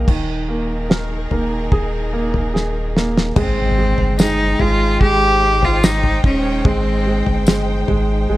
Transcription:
Already playing: grand piano D#5
0.07 sub bass D#1, string section D#3 D#4 G#4 A#4, grand piano D#3, kick, floor tom, crash
0.49 grand piano A#3
0.90 grand piano A#4, snare
1.31 sub bass D#1, grand piano A#3, floor tom
1.72 sub bass D#1, grand piano G#4, kick, floor tom
2.13 grand piano A#3
2.34 floor tom
2.54 grand piano G#4, snare
2.96 grand piano A#3, snare
3.17 snare
3.36 sub bass G#1, grand piano G#3, string section G#3 D#4 C5 G5, cello C4, kick, floor tom, crash, impact
3.78 grand piano G#3
3.98 sub bass G1, floor tom
4.19 grand piano G#3, cello D#4, snare, tambourine
4.59 sub bass G#1, grand piano G#3, cello F4, floor tom
5.01 sub bass G#1, grand piano G#3, cello G4, kick
5.62 cello F4, floor tom
5.83 cello D#4, snare, tambourine
6.03 floor tom
6.24 sub bass D#1, cello C#4, kick
6.65 sub bass G#1, grand piano G#3, cello C4, kick, floor tom
7.07 grand piano G#3
7.26 sub bass G1, floor tom
7.46 grand piano G#3, snare, tambourine
7.88 sub bass G#1, grand piano G#3, floor tom
8.29 sub bass G#1, grand piano G#3

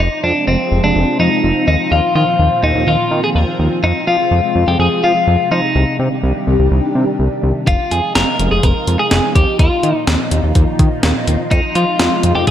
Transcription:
0.00 string machine C3 F3 G#3 C4 F4, clean electric guitar D#4
0.23 analog synth bass F2, clean electric guitar D4
0.47 analog synth bass F1, clean electric guitar C4
0.71 analog synth bass F1
0.83 analog synth bass F1, clean electric guitar D4
0.95 analog synth bass F1
1.19 analog synth bass F2, clean electric guitar D#4
1.43 analog synth bass F1
1.67 analog synth bass D#2, string machine A#2 D#3, clean electric guitar D#4
1.91 analog synth bass D#2, clean electric guitar F4
2.15 analog synth bass D#3, clean electric guitar F4
2.39 analog synth bass D#2
2.63 analog synth bass D#2, clean electric guitar D#4
2.75 analog synth bass D#2
2.87 analog synth bass D#2, clean electric guitar F4
3.11 analog synth bass D#3
3.24 clean electric guitar G#4
3.35 analog synth bass D#2, clean electric guitar A#4
3.59 analog synth bass D#2
3.83 analog synth bass F2, string machine C3 F3 G#3, clean electric guitar D#4
4.07 analog synth bass F3, clean electric guitar F4
4.31 analog synth bass F2
4.55 analog synth bass F2
4.67 analog synth bass F2, clean electric guitar G4
4.79 analog synth bass F2, clean electric guitar G#4
5.03 analog synth bass F3, clean electric guitar F4
5.27 analog synth bass F2
5.51 analog synth bass F3, clean electric guitar D#4
5.75 analog synth bass C2, string machine D#3 G3 D4 G4
5.99 analog synth bass C3
6.23 analog synth bass C2
6.47 analog synth bass C2
6.59 analog synth bass C2
6.71 analog synth bass C2
6.95 analog synth bass C3
7.19 analog synth bass C2
7.43 analog synth bass C2
7.67 analog synth bass F1, string machine F3 G#3 D#4 F4, clean electric guitar F4, kick, closed hi-hat
7.91 analog synth bass F2, clean electric guitar G#4, closed hi-hat
8.15 analog synth bass F1, clean electric guitar A#4, snare, closed hi-hat
8.39 analog synth bass F1, closed hi-hat
8.51 analog synth bass F1, clean electric guitar G#4
8.63 analog synth bass F1, clean electric guitar A#4, kick, closed hi-hat
8.87 analog synth bass F2, closed hi-hat
8.99 clean electric guitar G#4
9.11 analog synth bass F1, snare, closed hi-hat
9.35 analog synth bass D#2, string machine A#2 D#3 F3 F4, clean electric guitar G4, kick, closed hi-hat
9.59 analog synth bass D#2, clean electric guitar F4, kick, closed hi-hat
9.83 analog synth bass D#3, closed hi-hat
10.07 analog synth bass D#2, snare, closed hi-hat
10.31 analog synth bass D#2, closed hi-hat
10.43 analog synth bass D#2
10.55 analog synth bass D#2, kick, closed hi-hat
10.79 analog synth bass D#3, kick, closed hi-hat
11.03 analog synth bass D#2, snare, closed hi-hat
11.28 analog synth bass D#2, closed hi-hat
11.51 analog synth bass F2, string machine C3 G#3, clean electric guitar D#4, kick, closed hi-hat
11.75 analog synth bass F3, clean electric guitar F4, closed hi-hat
11.99 analog synth bass F2, snare, closed hi-hat
12.23 analog synth bass F2, closed hi-hat
12.35 analog synth bass F2, clean electric guitar G4
12.47 analog synth bass F2, clean electric guitar G#4, kick, closed hi-hat

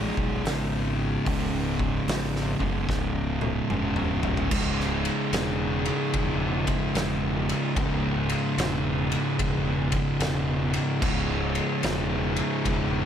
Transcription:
Already playing: fingered electric bass A1, distorted electric guitar C#2 G#2 C#3
0.17 fingered electric bass B1, kick
0.45 fingered electric bass G#1, distorted electric guitar C#2 G#2, snare, open hi-hat
0.49 distorted electric guitar C#3
1.25 fingered electric bass C#1, distorted electric guitar C#2 G#2, kick, open hi-hat
1.30 distorted electric guitar C#3
1.79 kick
2.07 fingered electric bass G#1, snare, open hi-hat
2.36 snare
2.60 fingered electric bass F#1, distorted electric guitar G#2 C#3, kick
2.64 distorted electric guitar C#2
2.89 fingered electric bass C#1, kick, snare
3.41 high tom
3.70 fingered electric bass E1, distorted electric guitar C#2 G#2 C#3, mid tom
3.96 mid tom
4.23 fingered electric bass E1, floor tom
4.37 floor tom
4.51 fingered electric bass C#1, distorted electric guitar C#2 G#2 C#3, kick, crash
4.80 snare
5.05 ride
5.32 fingered electric bass E1, snare, ride
5.86 ride
6.14 fingered electric bass E1, kick, ride
6.67 kick, ride
6.95 fingered electric bass E1, snare, ride
7.49 ride
7.75 fingered electric bass C#1, distorted electric guitar C#2 G#2, kick, ride
7.79 distorted electric guitar C#3
8.29 ride
8.57 fingered electric bass E1, snare, ride
9.12 ride
9.39 fingered electric bass E1, kick, ride
9.92 kick, ride
10.20 fingered electric bass E1, snare, ride
10.74 ride
11.02 fingered electric bass C#1, distorted electric guitar C#2 G#2 C#3, kick, crash
11.55 ride
11.83 fingered electric bass E1, snare, ride
12.36 ride
12.65 fingered electric bass E1, kick, ride

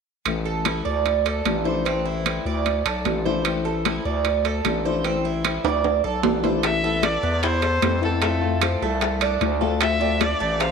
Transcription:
0.25 fm bass A1, nylon-string guitar E3 A3 C4 E4, high conga, high timbale
0.45 cuban tres A4, high conga
0.65 nylon-string guitar E3 A3 C4 E4, cuban tres E4, high conga, high timbale
0.85 fm bass D2, cuban tres D5
1.05 muted nylon-string guitar stroke, high conga, high timbale
1.25 cuban tres A4, high conga, high timbale
1.45 fm bass A1, nylon-string guitar F3 A3 D4 E4, high conga, high timbale, low timbale
1.64 nylon-string guitar F3 A3 D4 E4, cuban tres C5, high conga
1.85 nylon-string guitar E3 A3 C4 E4, cuban tres C4, high conga, high timbale
2.05 cuban tres E4, high conga
2.25 nylon-string guitar E3 A3 C4 E4, high conga, high timbale
2.45 fm bass D2, cuban tres D5, high conga
2.66 muted nylon-string guitar stroke, high conga, high timbale
2.86 fm bass B1, cuban tres A4, high conga, high timbale
3.05 fm bass A1, nylon-string guitar F3 A3 D4 E4, high conga, high timbale, low timbale
3.25 nylon-string guitar F3 A3 D4 E4, cuban tres C5, high conga
3.45 nylon-string guitar E3 A3 C4 E4, high conga, high timbale
3.65 cuban tres A4, high conga
3.85 nylon-string guitar E3 A3 C4 E4, cuban tres E4, high conga, high timbale
4.05 fm bass D2, cuban tres D5
4.25 muted nylon-string guitar stroke, high conga, high timbale
4.45 cuban tres A4, high conga, high timbale
4.64 fm bass A1, nylon-string guitar F3 A3 D4 E4, high conga, high timbale, low timbale
4.85 nylon-string guitar F3 A3 D4 E4, cuban tres C5, high conga
5.04 nylon-string guitar E3 A3 C4 E4, cuban tres C4, high conga, high timbale
5.25 cuban tres E4, high conga
5.44 nylon-string guitar E3 A3 C4 E4, high conga, high timbale
5.64 fm bass D2, cuban tres D5, high conga, high timbale
5.84 muted nylon-string guitar stroke, high conga, high timbale
6.04 fm bass B1, cuban tres A4, high conga
6.23 fm bass A1, nylon-string guitar F3 A3 D4 E4, high conga, low timbale
6.43 nylon-string guitar F3 A3 D4 E4, cuban tres C5, high conga, low timbale
6.63 nylon-string guitar C3 E3 A3 B3 E4, violin E5, high bongo, high conga, high timbale
6.83 nylon-string guitar E3 A3 B3 E4, cuban tres A4, high conga
7.03 violin D5, high bongo, high conga, high timbale
7.23 fm bass E2, cuban tres B3, high bongo
7.43 cuban tres E4, violin C5, muted nylon-string guitar stroke, high bongo, high conga, high timbale
7.62 cuban tres A4, high bongo, high conga, high timbale
7.82 fm bass F2, nylon-string guitar E3 A3 B3 E4, high bongo, low bongo, high conga, high timbale, low timbale
8.01 nylon-string guitar E3 A3 B3 E4, cuban tres A4, violin A4, high bongo, high conga
8.21 nylon-string guitar D3 A3 C4 F4, cuban tres A3, high bongo, high conga, high timbale
8.41 nylon-string guitar A3 C4 F4, high conga
8.62 cuban tres C4, high bongo, high conga, high timbale
8.82 fm bass C2, cuban tres A3, high bongo, high conga
9.01 muted nylon-string guitar stroke, high bongo, high conga, high timbale
9.21 cuban tres D4, high bongo, high conga, high timbale
9.41 fm bass D2, nylon-string guitar D3 A3 C4 F4, high bongo, low bongo, high conga, high timbale
9.61 nylon-string guitar A3 C4 F4, cuban tres A4, high bongo, high conga
9.80 nylon-string guitar D3 A3 C4 F4, violin E5, high bongo, high conga, high timbale
10.00 nylon-string guitar A3 C4 F4, cuban tres D4, high conga
10.21 violin D5, high bongo, high conga, high timbale
10.40 fm bass A1, cuban tres A3, high bongo
10.60 cuban tres C4, violin F5, muted nylon-string guitar stroke, high bongo, high conga, high timbale

